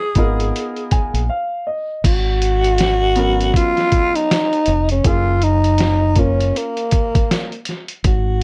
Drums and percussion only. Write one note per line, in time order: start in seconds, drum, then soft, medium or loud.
0.15 kick medium
0.15 closed hi-hat medium
0.40 closed hi-hat medium
0.56 closed hi-hat medium
0.76 closed hi-hat soft
0.91 kick medium
0.91 closed hi-hat medium
1.15 closed hi-hat medium
2.04 kick loud
2.04 closed hi-hat medium
2.04 crash medium
2.42 closed hi-hat medium
2.64 closed hi-hat medium
2.78 snare loud
2.78 closed hi-hat medium
3.16 closed hi-hat medium
3.41 closed hi-hat medium
3.54 kick medium
3.54 closed hi-hat medium
3.77 snare soft
3.77 closed hi-hat soft
3.92 kick medium
3.92 closed hi-hat medium
4.15 closed hi-hat medium
4.31 snare loud
4.31 closed hi-hat medium
4.53 closed hi-hat soft
4.66 closed hi-hat medium
4.89 closed hi-hat medium
5.04 kick loud
5.04 closed hi-hat medium
5.42 closed hi-hat medium
5.64 closed hi-hat soft
5.78 snare loud
5.78 closed hi-hat medium
6.16 kick medium
6.16 closed hi-hat medium
6.40 closed hi-hat medium
6.56 closed hi-hat medium
6.77 closed hi-hat soft
6.91 kick medium
6.91 closed hi-hat medium
7.15 kick loud
7.15 closed hi-hat medium
7.31 snare loud
7.31 closed hi-hat medium
7.52 closed hi-hat soft
7.65 snare soft
7.65 closed hi-hat medium
7.88 closed hi-hat medium
8.04 kick loud
8.04 closed hi-hat medium